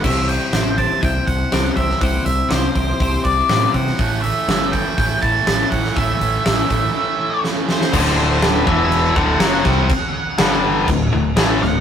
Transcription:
<<
  \new Staff \with { instrumentName = "Lead electric guitar" } { \time 4/4 \key c \lydian \tempo 4 = 122 e''8 g''4 a''8 g''8 fis''4 e''8 | fis''8 e''8 c''4. d''4 fis''8~ | fis''8 e''4 g''4 a''4 fis''8 | e''2. r8 c''8~ |
c''8 c''8 b'8 e''4 fis''4 fis''8~ | fis''4. r2 fis''8 | }
  \new Staff \with { instrumentName = "Clean electric guitar" } { \time 4/4 \key c \lydian <c g c' e' g' c''>4 <c' e' g' c''>8 <c' e' g' c''>8 <c' e' g' c''>4 <c g c' e' g' c''>8 <c' e' g' c''>8 | <c g c' e' g' c''>4 <c' e' g' c''>8 <c' e' g' c''>8 <c' e' g' c''>4 <c g c' e' g' c''>8 <c' e' g' c''>8 | r1 | r1 |
r1 | r1 | }
  \new Staff \with { instrumentName = "Distorted electric guitar" } { \clef bass \time 4/4 \key c \lydian r1 | r1 | <a, e a>8 <a, e a>8 <a, e a>8 <a, e a>8 <a, e a>8 <a, e a>8 <a, e a>8 <a, e a>8 | <a, e a>8 <a, e a>8 <a, e a>8 <a, e a>8 <a, e a>8 <a, e a>8 <a, e a>8 <a, e a>8 |
<d, a, d>4. <e, b, e>4 <d, a, d>8 <fis, cis fis>8 <c g c'>8 | r4 <g, d g>4 <d, a,>8 <d, a,>8 <a, e a>8 <d, a,>8 | }
  \new Staff \with { instrumentName = "Distorted electric guitar" } { \clef bass \time 4/4 \key c \lydian r1 | r1 | r1 | r1 |
<d, a, d>4. <e, b, e>4 <d, a, d>8 <fis, cis fis>8 <c g c'>8 | r4 <g, d g>4 <d, a,>8 <d, a,>8 <a, e a>8 <d, a,>8 | }
  \new Staff \with { instrumentName = "Fingered electric bass" } { \clef bass \time 4/4 \key c \lydian c,4 a,,4 c,8 c,8 c,8 c,8 | c,8 c,8 c,8 c,8 c,8 c,8 a,8 c8 | a,,4 g,,4 a,,8 a,,8 a,,8 a,,8 | a,,8 a,,8 a,,8 a,,8 r2 |
d,,4. e,,4 d,,8 fis,,8 c,8 | r4 g,,4 d,,8 d,,8 a,,8 d,,8 | }
  \new DrumStaff \with { instrumentName = "Drums" } \drummode { \time 4/4 <cymc bd>8 hho8 <hho sn>8 <hho bd>8 <hho bd>8 <hho bd>8 <hho sn>8 <hho bd>16 sn16 | <hho bd>8 hho8 <hho sn>8 <hho bd>8 <hho bd>8 <hho bd>8 <hho sn>8 <hho bd>16 sn16 | <hho bd>8 hho8 <hho sn>8 <hho bd>8 <hho bd>8 <hho bd>8 <hho sn>8 <hho bd>16 sn16 | <hho bd>8 hho8 <hho sn>8 <hho bd>8 r4 sn8 sn16 sn16 |
<cymc bd>4 <cymc sn>8 bd8 cymc8 bd8 <cymc sn>8 <bd sn>8 | <cymc bd>4 <cymc sn>4 <cymc bd>4 <cymc sn>8 sn8 | }
>>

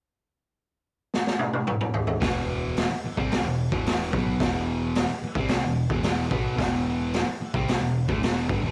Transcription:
<<
  \new Staff \with { instrumentName = "Distorted electric guitar" } { \clef bass \time 4/4 \key e \minor \tempo 4 = 110 r1 | <e, b, e>4~ <e, b, e>16 r8 <c g c'>8 <e, b,>8 <e, b, e>8. <b, fis b>8 | <e, b, e>4~ <e, b, e>16 r8 <c g c'>8 <e, b,>8 <e, b, e>8. <b, fis b>8 | <e, b, e>4~ <e, b, e>16 r8 <c g c'>8 <e, b,>8 <d a>16 <e, b, e>8 <g, d>16 <e, b,>16 | }
  \new Staff \with { instrumentName = "Picked electric bass" } { \clef bass \time 4/4 \key e \minor r1 | e,,4~ e,,16 r8 c,8 e,,8 e,,8. b,,8 | e,,4~ e,,16 r8 c,8 e,,8 e,,8. b,,8 | e,,4~ e,,16 r8 c,8 e,,8 d,16 e,,8 g,,16 e,,16 | }
  \new DrumStaff \with { instrumentName = "Drums" } \drummode { \time 4/4 r4 r4 sn16 sn16 tommh16 tommh16 toml16 toml16 tomfh16 tomfh16 | <hho bd sn>4 <hho sn>8. bd16 <hho sn>8. bd16 <hho sn>8 bd8 | <hho bd sn>4 <hho sn>8. bd16 <hho sn>8. bd16 <hho sn>8 bd8 | <hho bd sn>4 <hho sn>8. bd16 <hho sn>8. bd16 <hho sn>8 bd8 | }
>>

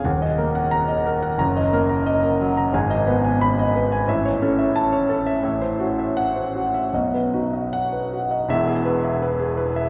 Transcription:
<<
  \new Staff \with { instrumentName = "Grand piano" } { \time 2/4 \key ees \dorian \tempo 4 = 88 << { r4 bes''8 r8 | bes''8 r4. | \key e \major r4 b''8 r8 | r4 a''8 r8 |
r4 fis''8 r8 | r4 fis''8 r8 | e''8 r4. | } \\ { ges''16 ees''16 bes'16 ges''8 ees''16 bes'16 ges''16 | r16 ees''16 bes'16 bes''16 ees''16 bes'16 ges16 bes''16 | gis''16 dis''16 b'16 gis''8 dis''16 b'16 gis''16 | e''16 cis''16 a'16 e''8 cis''16 a'16 e''16 |
e''16 c''16 fis'16 e''8 c''16 fis'16 e''16 | dis''16 b'16 fis'16 dis''8 b'16 fis'16 dis''16 | r16 gis'16 b'16 e''16 b'16 gis'16 b'16 e''16 | } >> }
  \new Staff \with { instrumentName = "Grand piano" } { \clef bass \time 2/4 \key ees \dorian <ees,, ees,>8 bes4 r8 | <ges,, ges,>8 bes4 r8 | \key e \major <gis,, gis,>8 b4 r8 | <a,, a,>8 cis'4 r8 |
<a,, a,>2 | <b,, b,>8 dis'4 r8 | <e,, e,>2 | }
>>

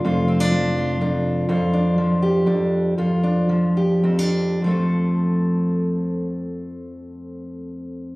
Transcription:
<<
  \new Staff \with { instrumentName = "Steel-string acoustic guitar" } { \time 3/4 \key f \major \tempo 4 = 110 << { f'8 c'16 d'8. f'8 d'4 | f'8 d'4 g'8 d'4 | f'8 d'4 g'8 c'16 d'8. | <f a c' a'>2.~ |
<f a c' a'>2. | } \\ { f,4 f4 f,4 | f,4 f4 f,4 | f,4 f4 f,4 | f,2.~ |
f,2. | } >> }
  \new Staff \with { instrumentName = "Fingered electric bass" } { \clef bass \time 3/4 \key f \major f,,2. | r2. | r2. | r2. |
r2. | }
>>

